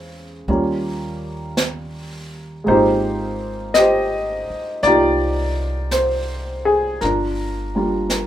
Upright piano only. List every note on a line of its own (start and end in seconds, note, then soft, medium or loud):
0.00 0.48 C#3 soft
0.00 0.48 G#3 soft
0.00 0.46 C4 soft
0.00 0.46 C#4 soft
0.00 0.49 F4 soft
0.00 0.11 G#4 medium
0.00 0.48 C5 soft
0.48 2.66 G3 soft
0.48 2.64 A#3 soft
0.48 2.67 C#4 soft
0.48 2.67 F4 soft
2.64 7.01 G#3 soft
2.64 4.82 A#3 soft
2.64 7.02 C4 soft
2.68 4.81 D#4 medium
2.68 4.86 F4 medium
2.68 3.77 G4 medium
2.68 3.77 C5 medium
3.74 4.86 G4 medium
3.74 4.87 D#5 medium
3.78 5.90 C5 medium
4.83 7.02 A#3 soft
4.83 7.03 D#4 soft
4.83 6.99 F4 medium
4.83 5.96 D5 medium
4.88 7.00 G4 medium
5.92 6.69 C5 medium
6.65 7.02 G#4 medium
7.01 7.74 D4 soft
7.01 7.75 F4 soft
7.01 8.09 A#4 medium
7.75 8.27 G3 soft
7.75 8.27 A#3 soft
7.75 8.27 D4 soft
7.75 8.27 F4 soft
8.11 8.27 A#4 soft